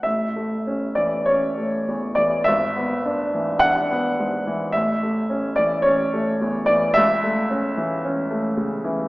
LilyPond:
<<
  \new Staff \with { instrumentName = "Grand piano" } { \time 4/4 \key a \major \tempo 4 = 54 e''8. d''16 cis''8. d''16 e''4 fis''4 | e''8. d''16 cis''8. d''16 e''4 r4 | }
  \new Staff \with { instrumentName = "Grand piano" } { \clef bass \time 4/4 \key a \major a,,16 a16 cis'16 e16 cis'16 a16 e,16 e16 gis,,16 b16 d'16 e16 d'16 b16 gis,16 e16 | a,,16 a16 cis'16 e16 cis'16 a16 e,16 e16 cis,16 a16 cis'16 e16 cis'16 a16 cis16 e16 | }
>>